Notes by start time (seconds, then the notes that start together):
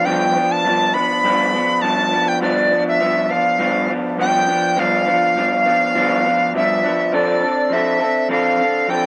0.05 G2 F3 B3 D4 G5
0.35 F3 B3 D4
0.52 A5
0.64 G2 F3 B3 D4
0.93 F3 B3 D4 B5
1.23 G2 F3 B3 D4
1.52 F3 B3 D4
1.81 G2 F3 B3 D4 A5
2.11 F3 B3 D4
2.28 G5
2.40 G2 F3 B3 D4 D5
2.70 F3 B3 D4
2.88 E5
2.99 G2 F3 B3 D4
3.29 F3 B3 D4 F5
3.58 G2 F3 B3 D4
3.88 F3 B3 D4
4.17 G2 F3 B3 D4
4.21 G5
4.47 F3 B3 D4
4.76 G2 F3 B3 D4 F5
5.06 F3 B3 D4
5.35 G2 F3 B3 D4
5.65 F3 B3 D4
5.95 G2 F3 B3 D4
6.24 F3 B3 D4
6.54 G2 F3 B3 D4 E5
6.83 F3 B3 D4
7.12 F3 C4 D4 A4 D5
7.41 C4 D4 A4
7.70 F3 C4 D4 A4 E5
7.99 C4 D4 A4
8.29 F3 C4 D4 A4 F5
8.58 C4 D4 A4
8.88 F3 C4 D4 A4 G5